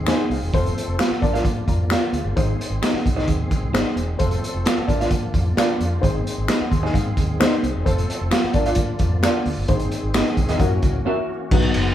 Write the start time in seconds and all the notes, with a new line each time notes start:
Already playing: D#2 D#3 G#3 C4 G#4
0.07 C4 D#4 G#4 C5 D#5 G#5, finger snap, snare, closed hi-hat
0.30 C2 F5, open hi-hat
0.42 E1
0.53 F1 F3 A3 C4 F4 A4 C5, kick, closed hi-hat
0.66 closed hi-hat
0.78 closed hi-hat
0.88 F1
0.99 F4 A4 C5 F5, finger snap, snare, closed hi-hat
1.10 muted fingered electric bass stroke, snare
1.20 A#1 D3 F3 A#3 D4 F4 A#4 D5, kick, closed hi-hat
1.33 F4 A#4 D5 F5, snare, closed hi-hat
1.45 A#2, kick, closed hi-hat
1.68 F2 D5 A#5, kick, closed hi-hat
1.90 F4 A#4 D5 F5 G5, finger snap, snare, closed hi-hat
2.13 D2 G#4 F5, closed hi-hat
2.25 G1
2.36 G#1 D#3 G#3 C4 D#4 G#4 C5, kick, closed hi-hat
2.61 closed hi-hat
2.70 G#1
2.82 D#4 G#4 C5 D#5, finger snap, snare, closed hi-hat
2.94 muted fingered electric bass stroke, snare
3.06 C2, kick, closed hi-hat
3.16 D#4 G#4 C5 D#5, snare
3.28 D#2, kick, closed hi-hat
3.51 kick, closed hi-hat
3.62 C2
3.73 G#1 C4 D#4 G#4 C5 D#5, finger snap, snare, closed hi-hat
3.96 E1, closed hi-hat
4.18 F1 F3 A3 C4 F4 A4 C5, kick, closed hi-hat
4.31 closed hi-hat
4.44 closed hi-hat
4.54 F1
4.66 F4 A4 C5 F5, finger snap, snare, closed hi-hat
4.78 muted fingered electric bass stroke
4.87 A#1 D3 A#3 D4 F4 A#4 D5, kick, closed hi-hat
5.01 F4 A#4 D5 F5, snare, closed hi-hat
5.11 A#2, kick, closed hi-hat
5.34 F2, kick, closed hi-hat
5.57 A#2 D4 F4 A#4 D5 F5, finger snap, snare, closed hi-hat
5.80 F2, closed hi-hat
6.01 G#1 D#3 G#3 C4 D#4 G#4 C5, kick, closed hi-hat
6.27 closed hi-hat
6.38 G#1
6.48 D#4 G#4 C5 D#5, finger snap, snare, closed hi-hat
6.61 muted fingered electric bass stroke
6.71 D#2 C6, kick, closed hi-hat
6.83 D#4 G#4 C5 D#5 G#5, snare
6.94 G#2 F5, kick, closed hi-hat
7.17 D#2, kick, closed hi-hat
7.40 C4 D#4 G#4 C5 D#5, finger snap, snare, closed hi-hat
7.63 C2, closed hi-hat
7.75 E1
7.85 F1 F3 A3 C4 F4 A4 C5, kick, closed hi-hat
7.98 closed hi-hat
8.10 closed hi-hat
8.21 F1
8.31 F4 A4 C5 F5, finger snap, snare, closed hi-hat
8.44 muted fingered electric bass stroke, snare
8.53 A#1 D3 A#3 D4 F4 A#4 D5, kick, closed hi-hat
8.66 F4 A#4 D5 F5, closed hi-hat
8.75 A#2, kick, closed hi-hat
8.99 F2, kick, closed hi-hat
9.23 D4 F4 A#4 D5 F5, finger snap, snare, closed hi-hat
9.45 D2, open hi-hat
9.57 G1
9.68 G#1 D#3 G#3 C4 D#4 G#4 C5, kick, closed hi-hat
9.79 closed hi-hat
9.91 closed hi-hat
10.03 G#1
10.14 D#4 G#4 C5 D#5, finger snap, snare, closed hi-hat
10.26 snare
10.37 C2, kick, closed hi-hat
10.49 D#2 D#4 G#4 C5 D#5, snare, closed hi-hat
10.59 F#2 E3 A#3 C#4 E4 F#4 A#4, kick, closed hi-hat
10.82 C#2, kick, closed hi-hat
11.05 C#4 E4 F#4 A#4 E5
11.51 B1 D#3 F#3 B3 D#4 F#4 B4, kick, crash
11.62 ride
11.74 F#1, ride